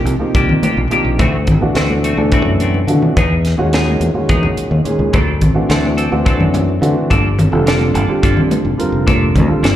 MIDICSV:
0, 0, Header, 1, 6, 480
1, 0, Start_track
1, 0, Tempo, 562852
1, 1016, Time_signature, 7, 3, 24, 8
1, 8322, End_track
2, 0, Start_track
2, 0, Title_t, "Clean electric guitar"
2, 0, Program_c, 0, 27
2, 299, Note_on_c, 0, 51, 75
2, 304, Note_on_c, 0, 58, 93
2, 304, Note_on_c, 0, 67, 91
2, 305, Note_on_c, 0, 62, 94
2, 440, Note_off_c, 0, 51, 0
2, 443, Note_off_c, 0, 58, 0
2, 443, Note_off_c, 0, 62, 0
2, 443, Note_off_c, 0, 67, 0
2, 542, Note_on_c, 0, 67, 53
2, 546, Note_on_c, 0, 62, 47
2, 551, Note_on_c, 0, 58, 40
2, 682, Note_off_c, 0, 67, 0
2, 685, Note_off_c, 0, 62, 0
2, 687, Note_off_c, 0, 58, 0
2, 779, Note_on_c, 0, 51, 52
2, 783, Note_on_c, 0, 58, 56
2, 787, Note_on_c, 0, 62, 54
2, 789, Note_on_c, 0, 67, 66
2, 922, Note_off_c, 0, 51, 0
2, 923, Note_off_c, 0, 58, 0
2, 925, Note_off_c, 0, 62, 0
2, 926, Note_off_c, 0, 67, 0
2, 1016, Note_on_c, 0, 52, 85
2, 1017, Note_on_c, 0, 57, 86
2, 1020, Note_on_c, 0, 60, 89
2, 1022, Note_on_c, 0, 66, 93
2, 1160, Note_off_c, 0, 52, 0
2, 1160, Note_off_c, 0, 57, 0
2, 1162, Note_off_c, 0, 60, 0
2, 1163, Note_off_c, 0, 66, 0
2, 1495, Note_on_c, 0, 52, 63
2, 1499, Note_on_c, 0, 57, 67
2, 1502, Note_on_c, 0, 60, 69
2, 1506, Note_on_c, 0, 66, 62
2, 1640, Note_off_c, 0, 52, 0
2, 1642, Note_off_c, 0, 57, 0
2, 1644, Note_off_c, 0, 60, 0
2, 1645, Note_off_c, 0, 66, 0
2, 1740, Note_on_c, 0, 66, 49
2, 1747, Note_on_c, 0, 60, 42
2, 1750, Note_on_c, 0, 57, 39
2, 1883, Note_off_c, 0, 66, 0
2, 1886, Note_off_c, 0, 60, 0
2, 1888, Note_off_c, 0, 57, 0
2, 1985, Note_on_c, 0, 52, 77
2, 1989, Note_on_c, 0, 57, 74
2, 1991, Note_on_c, 0, 66, 93
2, 1992, Note_on_c, 0, 60, 77
2, 2125, Note_off_c, 0, 52, 0
2, 2128, Note_off_c, 0, 57, 0
2, 2129, Note_off_c, 0, 60, 0
2, 2129, Note_off_c, 0, 66, 0
2, 2224, Note_on_c, 0, 66, 43
2, 2229, Note_on_c, 0, 60, 43
2, 2235, Note_on_c, 0, 57, 38
2, 2365, Note_off_c, 0, 66, 0
2, 2368, Note_off_c, 0, 60, 0
2, 2371, Note_off_c, 0, 57, 0
2, 2703, Note_on_c, 0, 59, 76
2, 2707, Note_on_c, 0, 63, 85
2, 2710, Note_on_c, 0, 68, 94
2, 2845, Note_off_c, 0, 59, 0
2, 2847, Note_off_c, 0, 63, 0
2, 2849, Note_off_c, 0, 68, 0
2, 3185, Note_on_c, 0, 59, 53
2, 3190, Note_on_c, 0, 63, 68
2, 3196, Note_on_c, 0, 68, 69
2, 3326, Note_off_c, 0, 59, 0
2, 3329, Note_off_c, 0, 63, 0
2, 3332, Note_off_c, 0, 68, 0
2, 3660, Note_on_c, 0, 59, 77
2, 3661, Note_on_c, 0, 63, 83
2, 3665, Note_on_c, 0, 68, 79
2, 3804, Note_off_c, 0, 59, 0
2, 3804, Note_off_c, 0, 63, 0
2, 3806, Note_off_c, 0, 68, 0
2, 4377, Note_on_c, 0, 54, 86
2, 4379, Note_on_c, 0, 60, 88
2, 4383, Note_on_c, 0, 62, 85
2, 4384, Note_on_c, 0, 69, 93
2, 4522, Note_off_c, 0, 54, 0
2, 4523, Note_off_c, 0, 60, 0
2, 4526, Note_off_c, 0, 62, 0
2, 4526, Note_off_c, 0, 69, 0
2, 4855, Note_on_c, 0, 54, 57
2, 4859, Note_on_c, 0, 60, 56
2, 4859, Note_on_c, 0, 62, 63
2, 4865, Note_on_c, 0, 69, 65
2, 5001, Note_off_c, 0, 54, 0
2, 5003, Note_off_c, 0, 60, 0
2, 5003, Note_off_c, 0, 62, 0
2, 5006, Note_off_c, 0, 69, 0
2, 5094, Note_on_c, 0, 69, 55
2, 5096, Note_on_c, 0, 62, 47
2, 5101, Note_on_c, 0, 60, 41
2, 5241, Note_off_c, 0, 69, 0
2, 5242, Note_off_c, 0, 62, 0
2, 5244, Note_off_c, 0, 60, 0
2, 5333, Note_on_c, 0, 54, 76
2, 5337, Note_on_c, 0, 60, 82
2, 5337, Note_on_c, 0, 62, 82
2, 5339, Note_on_c, 0, 69, 85
2, 5480, Note_off_c, 0, 54, 0
2, 5482, Note_off_c, 0, 60, 0
2, 5482, Note_off_c, 0, 62, 0
2, 5483, Note_off_c, 0, 69, 0
2, 6057, Note_on_c, 0, 58, 84
2, 6058, Note_on_c, 0, 53, 86
2, 6061, Note_on_c, 0, 62, 95
2, 6063, Note_on_c, 0, 69, 97
2, 6202, Note_off_c, 0, 53, 0
2, 6202, Note_off_c, 0, 58, 0
2, 6204, Note_off_c, 0, 62, 0
2, 6205, Note_off_c, 0, 69, 0
2, 6536, Note_on_c, 0, 53, 59
2, 6541, Note_on_c, 0, 58, 61
2, 6546, Note_on_c, 0, 62, 66
2, 6547, Note_on_c, 0, 69, 65
2, 6681, Note_off_c, 0, 53, 0
2, 6683, Note_off_c, 0, 58, 0
2, 6686, Note_off_c, 0, 62, 0
2, 6687, Note_off_c, 0, 69, 0
2, 6774, Note_on_c, 0, 69, 51
2, 6780, Note_on_c, 0, 62, 53
2, 6784, Note_on_c, 0, 58, 45
2, 6920, Note_off_c, 0, 69, 0
2, 6923, Note_off_c, 0, 62, 0
2, 6925, Note_off_c, 0, 58, 0
2, 7016, Note_on_c, 0, 53, 81
2, 7019, Note_on_c, 0, 58, 82
2, 7023, Note_on_c, 0, 62, 85
2, 7024, Note_on_c, 0, 69, 82
2, 7161, Note_off_c, 0, 53, 0
2, 7162, Note_off_c, 0, 58, 0
2, 7164, Note_off_c, 0, 62, 0
2, 7164, Note_off_c, 0, 69, 0
2, 7732, Note_on_c, 0, 53, 82
2, 7735, Note_on_c, 0, 58, 81
2, 7738, Note_on_c, 0, 62, 92
2, 7741, Note_on_c, 0, 69, 87
2, 7878, Note_off_c, 0, 53, 0
2, 7879, Note_off_c, 0, 58, 0
2, 7881, Note_off_c, 0, 62, 0
2, 7882, Note_off_c, 0, 69, 0
2, 8213, Note_on_c, 0, 53, 63
2, 8217, Note_on_c, 0, 58, 68
2, 8219, Note_on_c, 0, 62, 71
2, 8222, Note_on_c, 0, 69, 73
2, 8322, Note_off_c, 0, 53, 0
2, 8322, Note_off_c, 0, 58, 0
2, 8322, Note_off_c, 0, 62, 0
2, 8322, Note_off_c, 0, 69, 0
2, 8322, End_track
3, 0, Start_track
3, 0, Title_t, "Grand piano"
3, 0, Program_c, 1, 0
3, 0, Note_on_c, 1, 48, 86
3, 0, Note_on_c, 1, 53, 82
3, 0, Note_on_c, 1, 58, 82
3, 0, Note_on_c, 1, 63, 76
3, 0, Note_on_c, 1, 67, 104
3, 90, Note_off_c, 1, 48, 0
3, 92, Note_off_c, 1, 53, 0
3, 94, Note_off_c, 1, 58, 0
3, 95, Note_off_c, 1, 63, 0
3, 96, Note_off_c, 1, 67, 0
3, 161, Note_on_c, 1, 48, 77
3, 167, Note_on_c, 1, 53, 69
3, 171, Note_on_c, 1, 58, 69
3, 171, Note_on_c, 1, 63, 74
3, 176, Note_on_c, 1, 67, 81
3, 675, Note_off_c, 1, 48, 0
3, 678, Note_off_c, 1, 53, 0
3, 680, Note_off_c, 1, 58, 0
3, 680, Note_off_c, 1, 63, 0
3, 682, Note_off_c, 1, 67, 0
3, 766, Note_on_c, 1, 48, 77
3, 771, Note_on_c, 1, 53, 70
3, 773, Note_on_c, 1, 58, 70
3, 775, Note_on_c, 1, 63, 73
3, 778, Note_on_c, 1, 67, 81
3, 1011, Note_off_c, 1, 48, 0
3, 1013, Note_off_c, 1, 53, 0
3, 1014, Note_off_c, 1, 58, 0
3, 1016, Note_off_c, 1, 63, 0
3, 1017, Note_off_c, 1, 67, 0
3, 1371, Note_on_c, 1, 47, 77
3, 1375, Note_on_c, 1, 52, 67
3, 1375, Note_on_c, 1, 57, 76
3, 1381, Note_on_c, 1, 62, 74
3, 1383, Note_on_c, 1, 66, 89
3, 1780, Note_off_c, 1, 47, 0
3, 1781, Note_off_c, 1, 52, 0
3, 1782, Note_off_c, 1, 57, 0
3, 1784, Note_off_c, 1, 62, 0
3, 1786, Note_off_c, 1, 66, 0
3, 1851, Note_on_c, 1, 47, 81
3, 1852, Note_on_c, 1, 52, 77
3, 1855, Note_on_c, 1, 57, 71
3, 1857, Note_on_c, 1, 62, 74
3, 1860, Note_on_c, 1, 69, 90
3, 2361, Note_off_c, 1, 47, 0
3, 2362, Note_off_c, 1, 52, 0
3, 2364, Note_off_c, 1, 57, 0
3, 2364, Note_off_c, 1, 62, 0
3, 2366, Note_off_c, 1, 69, 0
3, 2460, Note_on_c, 1, 47, 82
3, 2462, Note_on_c, 1, 52, 70
3, 2464, Note_on_c, 1, 57, 68
3, 2467, Note_on_c, 1, 62, 66
3, 2468, Note_on_c, 1, 66, 79
3, 2699, Note_off_c, 1, 47, 0
3, 2700, Note_off_c, 1, 52, 0
3, 2701, Note_off_c, 1, 57, 0
3, 2703, Note_off_c, 1, 62, 0
3, 2704, Note_off_c, 1, 66, 0
3, 3050, Note_on_c, 1, 46, 82
3, 3053, Note_on_c, 1, 51, 73
3, 3054, Note_on_c, 1, 56, 80
3, 3057, Note_on_c, 1, 61, 78
3, 3059, Note_on_c, 1, 66, 100
3, 3460, Note_off_c, 1, 46, 0
3, 3462, Note_off_c, 1, 51, 0
3, 3462, Note_off_c, 1, 56, 0
3, 3463, Note_off_c, 1, 61, 0
3, 3465, Note_off_c, 1, 66, 0
3, 3531, Note_on_c, 1, 46, 68
3, 3531, Note_on_c, 1, 51, 60
3, 3536, Note_on_c, 1, 56, 64
3, 3539, Note_on_c, 1, 61, 70
3, 3539, Note_on_c, 1, 66, 72
3, 4042, Note_off_c, 1, 46, 0
3, 4042, Note_off_c, 1, 51, 0
3, 4045, Note_off_c, 1, 56, 0
3, 4046, Note_off_c, 1, 61, 0
3, 4046, Note_off_c, 1, 66, 0
3, 4132, Note_on_c, 1, 46, 71
3, 4136, Note_on_c, 1, 51, 70
3, 4136, Note_on_c, 1, 56, 66
3, 4139, Note_on_c, 1, 61, 71
3, 4141, Note_on_c, 1, 68, 85
3, 4376, Note_off_c, 1, 46, 0
3, 4378, Note_off_c, 1, 51, 0
3, 4378, Note_off_c, 1, 56, 0
3, 4380, Note_off_c, 1, 61, 0
3, 4380, Note_off_c, 1, 68, 0
3, 4727, Note_on_c, 1, 52, 76
3, 4728, Note_on_c, 1, 57, 75
3, 4735, Note_on_c, 1, 60, 73
3, 4735, Note_on_c, 1, 62, 67
3, 4737, Note_on_c, 1, 66, 84
3, 5138, Note_off_c, 1, 52, 0
3, 5139, Note_off_c, 1, 57, 0
3, 5142, Note_off_c, 1, 60, 0
3, 5142, Note_off_c, 1, 62, 0
3, 5143, Note_off_c, 1, 66, 0
3, 5209, Note_on_c, 1, 52, 86
3, 5215, Note_on_c, 1, 57, 70
3, 5217, Note_on_c, 1, 60, 85
3, 5218, Note_on_c, 1, 62, 80
3, 5219, Note_on_c, 1, 66, 93
3, 5720, Note_off_c, 1, 52, 0
3, 5723, Note_off_c, 1, 57, 0
3, 5724, Note_off_c, 1, 60, 0
3, 5725, Note_off_c, 1, 62, 0
3, 5725, Note_off_c, 1, 66, 0
3, 5807, Note_on_c, 1, 52, 88
3, 5811, Note_on_c, 1, 57, 68
3, 5814, Note_on_c, 1, 60, 71
3, 5816, Note_on_c, 1, 62, 65
3, 5820, Note_on_c, 1, 66, 89
3, 6053, Note_off_c, 1, 52, 0
3, 6055, Note_off_c, 1, 57, 0
3, 6056, Note_off_c, 1, 60, 0
3, 6057, Note_off_c, 1, 62, 0
3, 6059, Note_off_c, 1, 66, 0
3, 6409, Note_on_c, 1, 50, 89
3, 6412, Note_on_c, 1, 55, 79
3, 6417, Note_on_c, 1, 60, 73
3, 6418, Note_on_c, 1, 65, 81
3, 6421, Note_on_c, 1, 69, 99
3, 6818, Note_off_c, 1, 50, 0
3, 6819, Note_off_c, 1, 55, 0
3, 6822, Note_off_c, 1, 60, 0
3, 6823, Note_off_c, 1, 65, 0
3, 6824, Note_off_c, 1, 69, 0
3, 6893, Note_on_c, 1, 50, 83
3, 6893, Note_on_c, 1, 55, 69
3, 6897, Note_on_c, 1, 60, 62
3, 6900, Note_on_c, 1, 65, 71
3, 6904, Note_on_c, 1, 67, 86
3, 7401, Note_off_c, 1, 50, 0
3, 7401, Note_off_c, 1, 55, 0
3, 7403, Note_off_c, 1, 60, 0
3, 7404, Note_off_c, 1, 65, 0
3, 7406, Note_off_c, 1, 67, 0
3, 7484, Note_on_c, 1, 50, 76
3, 7490, Note_on_c, 1, 55, 75
3, 7492, Note_on_c, 1, 60, 80
3, 7493, Note_on_c, 1, 65, 76
3, 7498, Note_on_c, 1, 70, 90
3, 7996, Note_off_c, 1, 50, 0
3, 7999, Note_off_c, 1, 55, 0
3, 8000, Note_off_c, 1, 60, 0
3, 8000, Note_off_c, 1, 65, 0
3, 8003, Note_off_c, 1, 70, 0
3, 8083, Note_on_c, 1, 50, 74
3, 8088, Note_on_c, 1, 55, 70
3, 8088, Note_on_c, 1, 60, 64
3, 8093, Note_on_c, 1, 65, 74
3, 8095, Note_on_c, 1, 69, 81
3, 8322, Note_off_c, 1, 50, 0
3, 8322, Note_off_c, 1, 55, 0
3, 8322, Note_off_c, 1, 60, 0
3, 8322, Note_off_c, 1, 65, 0
3, 8322, Note_off_c, 1, 69, 0
3, 8322, End_track
4, 0, Start_track
4, 0, Title_t, "Fingered electric bass"
4, 0, Program_c, 2, 33
4, 44, Note_on_c, 2, 36, 86
4, 156, Note_off_c, 2, 36, 0
4, 293, Note_on_c, 2, 36, 73
4, 402, Note_off_c, 2, 36, 0
4, 657, Note_on_c, 2, 34, 84
4, 764, Note_off_c, 2, 34, 0
4, 892, Note_on_c, 2, 34, 77
4, 1002, Note_off_c, 2, 34, 0
4, 1014, Note_on_c, 2, 38, 97
4, 1259, Note_on_c, 2, 33, 74
4, 1272, Note_off_c, 2, 38, 0
4, 1366, Note_off_c, 2, 33, 0
4, 1492, Note_on_c, 2, 38, 87
4, 1821, Note_off_c, 2, 38, 0
4, 1853, Note_on_c, 2, 38, 80
4, 2072, Note_off_c, 2, 38, 0
4, 2091, Note_on_c, 2, 42, 72
4, 2421, Note_off_c, 2, 42, 0
4, 2451, Note_on_c, 2, 50, 79
4, 2563, Note_off_c, 2, 50, 0
4, 2701, Note_on_c, 2, 40, 93
4, 3026, Note_off_c, 2, 40, 0
4, 3060, Note_on_c, 2, 39, 77
4, 3386, Note_off_c, 2, 39, 0
4, 3414, Note_on_c, 2, 40, 78
4, 3525, Note_off_c, 2, 40, 0
4, 3657, Note_on_c, 2, 40, 77
4, 3767, Note_off_c, 2, 40, 0
4, 4016, Note_on_c, 2, 39, 81
4, 4126, Note_off_c, 2, 39, 0
4, 4255, Note_on_c, 2, 37, 83
4, 4365, Note_off_c, 2, 37, 0
4, 4381, Note_on_c, 2, 38, 99
4, 4619, Note_off_c, 2, 38, 0
4, 4619, Note_on_c, 2, 33, 81
4, 4728, Note_off_c, 2, 33, 0
4, 4857, Note_on_c, 2, 38, 92
4, 5184, Note_off_c, 2, 38, 0
4, 5219, Note_on_c, 2, 38, 81
4, 5436, Note_off_c, 2, 38, 0
4, 5456, Note_on_c, 2, 42, 70
4, 5783, Note_off_c, 2, 42, 0
4, 5814, Note_on_c, 2, 50, 80
4, 5925, Note_off_c, 2, 50, 0
4, 6060, Note_on_c, 2, 31, 109
4, 6385, Note_off_c, 2, 31, 0
4, 6413, Note_on_c, 2, 29, 85
4, 6741, Note_off_c, 2, 29, 0
4, 6776, Note_on_c, 2, 31, 83
4, 6885, Note_off_c, 2, 31, 0
4, 7020, Note_on_c, 2, 31, 87
4, 7127, Note_off_c, 2, 31, 0
4, 7374, Note_on_c, 2, 29, 80
4, 7484, Note_off_c, 2, 29, 0
4, 7610, Note_on_c, 2, 29, 86
4, 7977, Note_on_c, 2, 38, 76
4, 7990, Note_off_c, 2, 29, 0
4, 8085, Note_off_c, 2, 38, 0
4, 8210, Note_on_c, 2, 31, 90
4, 8322, Note_off_c, 2, 31, 0
4, 8322, End_track
5, 0, Start_track
5, 0, Title_t, "Muted fingered electric bass strokes"
5, 166, Note_on_c, 9, 29, 38
5, 252, Note_off_c, 9, 29, 0
5, 529, Note_on_c, 9, 29, 35
5, 614, Note_off_c, 9, 29, 0
5, 3533, Note_on_c, 9, 29, 34
5, 3619, Note_off_c, 9, 29, 0
5, 3896, Note_on_c, 9, 29, 31
5, 3981, Note_off_c, 9, 29, 0
5, 4137, Note_on_c, 9, 29, 36
5, 4222, Note_off_c, 9, 29, 0
5, 6894, Note_on_c, 9, 29, 40
5, 6979, Note_off_c, 9, 29, 0
5, 7254, Note_on_c, 9, 29, 31
5, 7340, Note_off_c, 9, 29, 0
5, 7495, Note_on_c, 9, 29, 34
5, 7580, Note_off_c, 9, 29, 0
5, 8322, End_track
6, 0, Start_track
6, 0, Title_t, "Drums"
6, 56, Note_on_c, 9, 42, 60
6, 141, Note_off_c, 9, 42, 0
6, 296, Note_on_c, 9, 36, 104
6, 297, Note_on_c, 9, 42, 80
6, 381, Note_off_c, 9, 36, 0
6, 382, Note_off_c, 9, 42, 0
6, 419, Note_on_c, 9, 64, 76
6, 505, Note_off_c, 9, 64, 0
6, 535, Note_on_c, 9, 63, 98
6, 539, Note_on_c, 9, 42, 59
6, 620, Note_off_c, 9, 63, 0
6, 624, Note_off_c, 9, 42, 0
6, 658, Note_on_c, 9, 64, 26
6, 743, Note_off_c, 9, 64, 0
6, 775, Note_on_c, 9, 64, 25
6, 778, Note_on_c, 9, 42, 49
6, 860, Note_off_c, 9, 64, 0
6, 863, Note_off_c, 9, 42, 0
6, 1018, Note_on_c, 9, 36, 100
6, 1018, Note_on_c, 9, 42, 76
6, 1018, Note_on_c, 9, 63, 85
6, 1103, Note_off_c, 9, 42, 0
6, 1103, Note_off_c, 9, 63, 0
6, 1104, Note_off_c, 9, 36, 0
6, 1254, Note_on_c, 9, 42, 57
6, 1258, Note_on_c, 9, 36, 71
6, 1258, Note_on_c, 9, 64, 73
6, 1340, Note_off_c, 9, 42, 0
6, 1343, Note_off_c, 9, 36, 0
6, 1344, Note_off_c, 9, 64, 0
6, 1495, Note_on_c, 9, 42, 77
6, 1506, Note_on_c, 9, 38, 100
6, 1581, Note_off_c, 9, 42, 0
6, 1591, Note_off_c, 9, 38, 0
6, 1622, Note_on_c, 9, 63, 67
6, 1622, Note_on_c, 9, 64, 27
6, 1707, Note_off_c, 9, 63, 0
6, 1707, Note_off_c, 9, 64, 0
6, 1741, Note_on_c, 9, 42, 61
6, 1744, Note_on_c, 9, 64, 28
6, 1826, Note_off_c, 9, 42, 0
6, 1830, Note_off_c, 9, 64, 0
6, 1976, Note_on_c, 9, 42, 77
6, 1980, Note_on_c, 9, 36, 101
6, 1982, Note_on_c, 9, 64, 27
6, 2061, Note_off_c, 9, 42, 0
6, 2065, Note_off_c, 9, 36, 0
6, 2067, Note_off_c, 9, 64, 0
6, 2102, Note_on_c, 9, 63, 49
6, 2187, Note_off_c, 9, 63, 0
6, 2217, Note_on_c, 9, 63, 52
6, 2218, Note_on_c, 9, 42, 59
6, 2302, Note_off_c, 9, 63, 0
6, 2303, Note_off_c, 9, 42, 0
6, 2338, Note_on_c, 9, 63, 63
6, 2423, Note_off_c, 9, 63, 0
6, 2458, Note_on_c, 9, 64, 57
6, 2459, Note_on_c, 9, 42, 55
6, 2543, Note_off_c, 9, 64, 0
6, 2544, Note_off_c, 9, 42, 0
6, 2578, Note_on_c, 9, 64, 69
6, 2664, Note_off_c, 9, 64, 0
6, 2701, Note_on_c, 9, 42, 80
6, 2701, Note_on_c, 9, 63, 90
6, 2703, Note_on_c, 9, 36, 100
6, 2787, Note_off_c, 9, 42, 0
6, 2787, Note_off_c, 9, 63, 0
6, 2788, Note_off_c, 9, 36, 0
6, 2940, Note_on_c, 9, 42, 59
6, 2950, Note_on_c, 9, 38, 33
6, 3025, Note_off_c, 9, 42, 0
6, 3035, Note_off_c, 9, 38, 0
6, 3178, Note_on_c, 9, 64, 31
6, 3181, Note_on_c, 9, 42, 80
6, 3191, Note_on_c, 9, 38, 110
6, 3263, Note_off_c, 9, 64, 0
6, 3266, Note_off_c, 9, 42, 0
6, 3277, Note_off_c, 9, 38, 0
6, 3302, Note_on_c, 9, 63, 65
6, 3387, Note_off_c, 9, 63, 0
6, 3420, Note_on_c, 9, 42, 64
6, 3505, Note_off_c, 9, 42, 0
6, 3659, Note_on_c, 9, 42, 76
6, 3661, Note_on_c, 9, 36, 107
6, 3744, Note_off_c, 9, 42, 0
6, 3747, Note_off_c, 9, 36, 0
6, 3778, Note_on_c, 9, 64, 79
6, 3864, Note_off_c, 9, 64, 0
6, 3901, Note_on_c, 9, 42, 61
6, 3986, Note_off_c, 9, 42, 0
6, 4019, Note_on_c, 9, 64, 27
6, 4105, Note_off_c, 9, 64, 0
6, 4140, Note_on_c, 9, 42, 50
6, 4147, Note_on_c, 9, 64, 27
6, 4225, Note_off_c, 9, 42, 0
6, 4232, Note_off_c, 9, 64, 0
6, 4379, Note_on_c, 9, 42, 69
6, 4382, Note_on_c, 9, 36, 102
6, 4384, Note_on_c, 9, 63, 99
6, 4464, Note_off_c, 9, 42, 0
6, 4467, Note_off_c, 9, 36, 0
6, 4470, Note_off_c, 9, 63, 0
6, 4617, Note_on_c, 9, 42, 61
6, 4620, Note_on_c, 9, 36, 61
6, 4622, Note_on_c, 9, 64, 82
6, 4702, Note_off_c, 9, 42, 0
6, 4705, Note_off_c, 9, 36, 0
6, 4707, Note_off_c, 9, 64, 0
6, 4860, Note_on_c, 9, 42, 73
6, 4866, Note_on_c, 9, 64, 30
6, 4870, Note_on_c, 9, 38, 106
6, 4945, Note_off_c, 9, 42, 0
6, 4951, Note_off_c, 9, 64, 0
6, 4955, Note_off_c, 9, 38, 0
6, 4985, Note_on_c, 9, 63, 72
6, 5070, Note_off_c, 9, 63, 0
6, 5099, Note_on_c, 9, 42, 61
6, 5185, Note_off_c, 9, 42, 0
6, 5340, Note_on_c, 9, 42, 73
6, 5341, Note_on_c, 9, 36, 109
6, 5426, Note_off_c, 9, 36, 0
6, 5426, Note_off_c, 9, 42, 0
6, 5463, Note_on_c, 9, 64, 77
6, 5548, Note_off_c, 9, 64, 0
6, 5576, Note_on_c, 9, 63, 104
6, 5581, Note_on_c, 9, 42, 53
6, 5661, Note_off_c, 9, 63, 0
6, 5666, Note_off_c, 9, 42, 0
6, 5702, Note_on_c, 9, 64, 30
6, 5787, Note_off_c, 9, 64, 0
6, 5819, Note_on_c, 9, 64, 26
6, 5825, Note_on_c, 9, 42, 57
6, 5904, Note_off_c, 9, 64, 0
6, 5910, Note_off_c, 9, 42, 0
6, 6058, Note_on_c, 9, 63, 92
6, 6062, Note_on_c, 9, 36, 91
6, 6063, Note_on_c, 9, 42, 79
6, 6144, Note_off_c, 9, 63, 0
6, 6148, Note_off_c, 9, 36, 0
6, 6149, Note_off_c, 9, 42, 0
6, 6299, Note_on_c, 9, 64, 96
6, 6304, Note_on_c, 9, 42, 61
6, 6384, Note_off_c, 9, 64, 0
6, 6390, Note_off_c, 9, 42, 0
6, 6535, Note_on_c, 9, 64, 30
6, 6541, Note_on_c, 9, 42, 83
6, 6552, Note_on_c, 9, 38, 112
6, 6621, Note_off_c, 9, 64, 0
6, 6627, Note_off_c, 9, 42, 0
6, 6637, Note_off_c, 9, 38, 0
6, 6660, Note_on_c, 9, 63, 67
6, 6745, Note_off_c, 9, 63, 0
6, 6781, Note_on_c, 9, 42, 64
6, 6867, Note_off_c, 9, 42, 0
6, 7021, Note_on_c, 9, 36, 110
6, 7024, Note_on_c, 9, 42, 91
6, 7106, Note_off_c, 9, 36, 0
6, 7109, Note_off_c, 9, 42, 0
6, 7137, Note_on_c, 9, 64, 82
6, 7223, Note_off_c, 9, 64, 0
6, 7258, Note_on_c, 9, 63, 93
6, 7260, Note_on_c, 9, 42, 62
6, 7343, Note_off_c, 9, 63, 0
6, 7345, Note_off_c, 9, 42, 0
6, 7381, Note_on_c, 9, 64, 30
6, 7467, Note_off_c, 9, 64, 0
6, 7502, Note_on_c, 9, 42, 61
6, 7503, Note_on_c, 9, 64, 26
6, 7587, Note_off_c, 9, 42, 0
6, 7588, Note_off_c, 9, 64, 0
6, 7740, Note_on_c, 9, 36, 101
6, 7740, Note_on_c, 9, 42, 73
6, 7741, Note_on_c, 9, 63, 96
6, 7825, Note_off_c, 9, 36, 0
6, 7826, Note_off_c, 9, 42, 0
6, 7826, Note_off_c, 9, 63, 0
6, 7863, Note_on_c, 9, 64, 31
6, 7948, Note_off_c, 9, 64, 0
6, 7979, Note_on_c, 9, 36, 67
6, 7980, Note_on_c, 9, 42, 61
6, 7982, Note_on_c, 9, 64, 81
6, 8064, Note_off_c, 9, 36, 0
6, 8066, Note_off_c, 9, 42, 0
6, 8067, Note_off_c, 9, 64, 0
6, 8221, Note_on_c, 9, 42, 82
6, 8231, Note_on_c, 9, 38, 108
6, 8306, Note_off_c, 9, 42, 0
6, 8316, Note_off_c, 9, 38, 0
6, 8322, End_track
0, 0, End_of_file